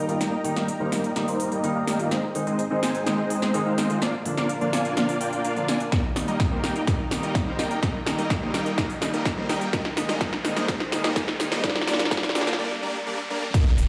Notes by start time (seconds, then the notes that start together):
Already playing: D#1 G3 A#3 D#4 A#4 D#5 G5 A#5, riser
0.08 D#3 G3 A#3 F4, closed hi-hat
0.21 G3 A#3 D#4 A#4 D#5, snare, closed hi-hat
0.44 D#1 D#3 G3 A#3 D#4, open hi-hat
0.56 G3 A#3 D#4 A#4 D#5, snare, closed hi-hat
0.68 D#1, closed hi-hat
0.80 D#3 G3 A#3 D#4 A#4 C5
0.92 D#1 G3 A#3 D#4 A#4 G5, snare, open hi-hat
1.04 closed hi-hat
1.15 D#3 G3 A#3 D#4 A#4 D#5, snare, closed hi-hat
1.28 G3 A#3 D#4 A#4 C5, open hi-hat
1.40 A#1, open hi-hat
1.52 G3 A#3 D#4 A#4 D#5, closed hi-hat
1.63 D#3 G3 A#3 D#4, closed hi-hat
1.76 G3 A#3 D#4 A#4 F5
1.87 D#1 G3 A#3 D#4 A#4 D#5, snare, open hi-hat
1.99 D#3 G3 A#3 F4, closed hi-hat
2.11 G#3 C4 D#4 G#4 C5 D#5, snare, closed hi-hat
2.34 G#1 D#3 G#3 C4 D#4, open hi-hat
2.47 G#3 C4 D#4 C5 D#5, closed hi-hat
2.59 G#1, closed hi-hat
2.70 D#3 G#3 C4 D#4 C5 D#5
2.83 G#1 G#3 C4 D#4 C5 G#5, snare, open hi-hat
2.95 closed hi-hat
3.06 D#3 G#3 C4 D#4 C5 D#5, snare, closed hi-hat
3.18 G#3 C4 D#4 C5 D#5
3.30 D#2, open hi-hat
3.42 G#3 C4 D#4 C5 D#5, snare, closed hi-hat
3.53 D#3 G#3 C4 D#4, closed hi-hat
3.66 G#3 C4 D#4 C5 F5
3.78 G#1 G#3 C4 D#4 C5 D#5, snare, open hi-hat
3.89 D#3 G#3 C4 F4, closed hi-hat
4.02 A#3 D4 F4 A#4 D5 F5, snare, closed hi-hat
4.25 A#1 D3 F3 A#3 D4, open hi-hat
4.37 A#3 D4 F4 D5 F5, snare, closed hi-hat
4.49 A#1, closed hi-hat
4.61 D3 F3 A#3 D4 F4 D5 F5, closed hi-hat
4.73 A#1 A#3 D4 F4 D5 G#5, snare, open hi-hat
4.85 closed hi-hat
4.96 D3 F3 A#3 D4 F4 D5 F5, snare, closed hi-hat
5.09 A#3 D4 F4 D5 F5, open hi-hat
5.21 F2 A#3 D4 F4 D5 G5, open hi-hat
5.33 closed hi-hat
5.45 A#3 D4 F4 D5 F5, closed hi-hat
5.56 D3 F3 A#3 D4, closed hi-hat
5.68 A#1 A#3 D4 F4 D5 G#5, snare, open hi-hat
5.80 closed hi-hat
5.92 G3 A#3 D#4 A#4 D#5 G5 A#5, kick, snare, closed hi-hat
6.15 D#3 G3 A#3 D#4, snare, open hi-hat
6.28 G3 A#3 D#4 A#4 D#5, closed hi-hat
6.40 kick, snare, closed hi-hat
6.51 D#3 G3 A#3 D#4 A#4 C5
6.64 G3 A#3 D#4 A#4 G5, snare, open hi-hat
6.76 closed hi-hat
6.87 G3 A#3 D#4 A#4 D#5, kick, snare, closed hi-hat
7.11 D#3 G3 A#3 D#4, snare, open hi-hat
7.23 G3 A#3 D#4 A#4 D#5, closed hi-hat
7.35 kick, snare, closed hi-hat
7.46 D#3 G3 A#3 D#4 A#4 C5
7.59 G3 A#3 D#4 A#4 G5, snare, open hi-hat
7.71 closed hi-hat
7.83 G3, kick, snare, closed hi-hat
8.06 D#3 G3 A#3 D#4, snare, open hi-hat
8.18 G3 A#3 D#4 A#4 D#5, closed hi-hat
8.30 kick, snare, closed hi-hat
8.41 D#3 G3 A#3 D#4 A#4 C5
8.54 G3 A#3 D#4 A#4 G5, snare, open hi-hat
8.66 closed hi-hat
8.78 G3 A#3 D#4 A#4 D#5, kick, snare, closed hi-hat
8.90 open hi-hat
9.01 D#3 G3 A#3 D#4, snare, open hi-hat
9.14 G3 A#3 D#4 A#4 D#5, closed hi-hat
9.25 kick, snare, closed hi-hat
9.37 D#3 G3 A#3 D#4 A#4 C5
9.49 G3 A#3 D#4 A#4 G5, snare, open hi-hat
9.61 closed hi-hat
9.73 G3 G#3 A#3 D#4 G#4 A#4 C5 D#5, kick, snare, closed hi-hat
9.85 snare
9.96 D#3 G3 A#3 D#4, snare, open hi-hat
10.09 G3 A#3 D#4 A#4 D#5, snare, closed hi-hat
10.21 G3 A#3 D#4 A#4 D#5, kick, snare, closed hi-hat
10.33 snare
10.44 D#3 G3 A#3 D#4, snare, open hi-hat
10.56 G3 A#3 D#4 A#4 D#5, snare, closed hi-hat
10.68 G3 A#3 D#4 A#4 D#5, kick, snare, closed hi-hat
10.80 snare
10.92 D#3 G3 A#3 D#4, snare, open hi-hat
11.04 G3 A#3 D#4 A#4 D#5, snare, closed hi-hat
11.16 G3 A#3 D#4 A#4 D#5, kick, snare, closed hi-hat
11.28 snare
11.39 D#3 G3 A#3 D#4, snare, open hi-hat
11.52 G3 A#3 D#4 A#4 D#5, snare, closed hi-hat
11.63 D3 G3 A#3 D4 A#4 D5 F5, kick, snare, closed hi-hat
11.70 snare
11.76 snare
11.81 snare
11.87 D3 G3 A#3 D4 A#4 D5, snare, open hi-hat
11.93 snare
11.99 snare, closed hi-hat
12.05 snare
12.11 D3 G3 A#3 D4 A#4 D5, kick, snare, closed hi-hat
12.17 snare
12.23 snare, closed hi-hat
12.29 snare
12.35 D3 G3 A#3 D4 A#4 D5, snare, open hi-hat
12.41 snare
12.47 snare, closed hi-hat
12.53 snare
12.59 G3 A#3 D4 A#4 D5
12.83 G3 A#3 D4 A#4 D5
13.07 G3 A#3 D4 A#4 D5
13.30 G3 A#3 D4 A#4 D5
13.54 G3 A#3 D#4 G4 A#4 D#5, kick, closed hi-hat, crash, impact
13.78 D#1, open hi-hat